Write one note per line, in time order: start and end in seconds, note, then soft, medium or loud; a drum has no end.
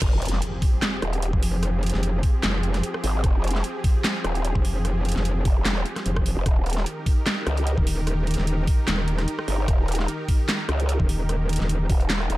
0.02 0.40 F1 loud
0.02 6.42 F3 medium
0.02 6.42 C4 medium
0.02 6.42 G4 medium
0.02 6.42 G#4 medium
0.02 kick loud
0.02 cross-stick medium
0.02 closed hi-hat medium
0.02 crash loud
0.02 impact medium
0.22 closed hi-hat medium
0.25 closed hi-hat medium
0.28 closed hi-hat medium
0.33 snare soft
0.42 closed hi-hat medium
0.62 kick loud
0.62 open hi-hat medium
0.82 snare loud
0.82 clap loud
0.82 closed hi-hat medium
1.02 1.32 D#1 loud
1.02 cross-stick medium
1.02 closed hi-hat medium
1.13 closed hi-hat medium
1.22 closed hi-hat medium
1.33 1.92 F1 loud
1.33 kick medium
1.43 open hi-hat medium
1.63 cross-stick soft
1.63 closed hi-hat medium
1.83 closed hi-hat soft
1.86 closed hi-hat medium
1.90 closed hi-hat medium
1.94 2.22 F1 medium
1.94 snare soft
2.03 closed hi-hat medium
2.23 kick loud
2.23 open hi-hat medium
2.43 2.82 F1 loud
2.43 snare loud
2.43 clap medium
2.43 closed hi-hat medium
2.54 cross-stick soft
2.63 closed hi-hat medium
2.74 cross-stick soft
2.74 snare soft
2.74 closed hi-hat medium
2.83 closed hi-hat medium
2.94 cross-stick medium
3.04 3.22 G#1 loud
3.04 open hi-hat medium
3.24 3.63 F1 loud
3.24 kick loud
3.24 cross-stick soft
3.24 closed hi-hat medium
3.44 closed hi-hat medium
3.48 closed hi-hat medium
3.51 closed hi-hat medium
3.55 snare soft
3.64 closed hi-hat medium
3.84 kick loud
3.84 open hi-hat medium
4.04 snare loud
4.04 clap loud
4.04 closed hi-hat medium
4.24 4.54 D#1 loud
4.24 cross-stick medium
4.24 closed hi-hat medium
4.35 closed hi-hat medium
4.45 closed hi-hat medium
4.55 5.14 F1 loud
4.55 kick medium
4.65 open hi-hat medium
4.85 cross-stick medium
4.85 closed hi-hat medium
5.05 closed hi-hat soft
5.09 closed hi-hat medium
5.12 closed hi-hat medium
5.16 5.44 F1 medium
5.16 snare soft
5.25 closed hi-hat medium
5.45 5.84 F1 medium
5.45 kick loud
5.45 open hi-hat medium
5.65 snare loud
5.65 clap medium
5.65 closed hi-hat medium
5.76 cross-stick medium
5.86 closed hi-hat medium
5.96 cross-stick medium
5.96 snare soft
5.96 closed hi-hat soft
6.06 6.35 F1 medium
6.06 closed hi-hat medium
6.16 kick medium
6.16 cross-stick medium
6.26 open hi-hat medium
6.37 6.44 F1 loud
6.46 6.85 D#1 loud
6.46 12.38 D#3 medium
6.46 12.38 D#4 medium
6.46 12.38 G4 medium
6.46 12.38 A#4 medium
6.46 kick loud
6.46 cross-stick medium
6.46 closed hi-hat medium
6.66 closed hi-hat soft
6.70 closed hi-hat medium
6.73 closed hi-hat medium
6.77 snare soft
6.86 closed hi-hat medium
7.06 kick loud
7.06 open hi-hat medium
7.26 snare loud
7.26 clap medium
7.26 closed hi-hat medium
7.47 7.76 C#2 loud
7.47 cross-stick medium
7.47 closed hi-hat medium
7.57 closed hi-hat medium
7.67 closed hi-hat medium
7.78 8.36 D#1 loud
7.78 kick medium
7.87 open hi-hat loud
8.07 cross-stick medium
8.07 closed hi-hat medium
8.27 closed hi-hat soft
8.31 closed hi-hat medium
8.34 closed hi-hat medium
8.38 8.66 D#1 medium
8.38 snare soft
8.47 closed hi-hat medium
8.67 kick loud
8.67 open hi-hat medium
8.88 9.26 D#1 loud
8.88 snare loud
8.88 clap medium
8.88 closed hi-hat medium
8.98 cross-stick medium
9.08 closed hi-hat medium
9.19 cross-stick medium
9.19 snare soft
9.19 closed hi-hat medium
9.28 closed hi-hat medium
9.39 cross-stick medium
9.48 9.67 G1 loud
9.48 open hi-hat medium
9.68 10.07 D#1 loud
9.68 kick loud
9.68 cross-stick medium
9.68 closed hi-hat medium
9.88 closed hi-hat medium
9.92 closed hi-hat medium
9.95 closed hi-hat medium
9.99 snare soft
10.08 closed hi-hat medium
10.28 kick loud
10.28 open hi-hat medium
10.49 snare loud
10.49 clap loud
10.49 closed hi-hat medium
10.69 10.98 C#2 loud
10.69 cross-stick medium
10.69 closed hi-hat medium
10.80 closed hi-hat medium
10.89 closed hi-hat medium
11.00 11.58 D#1 loud
11.00 kick medium
11.09 open hi-hat loud
11.29 cross-stick soft
11.29 closed hi-hat medium
11.49 closed hi-hat medium
11.53 closed hi-hat medium
11.56 closed hi-hat medium
11.60 11.88 D#1 medium
11.60 snare soft
11.69 closed hi-hat medium
11.90 12.28 D#1 medium
11.90 kick loud
11.90 open hi-hat medium
12.00 closed hi-hat soft
12.10 snare loud
12.10 clap medium
12.10 closed hi-hat medium
12.21 cross-stick medium
12.30 12.38 D#1 loud
12.30 closed hi-hat medium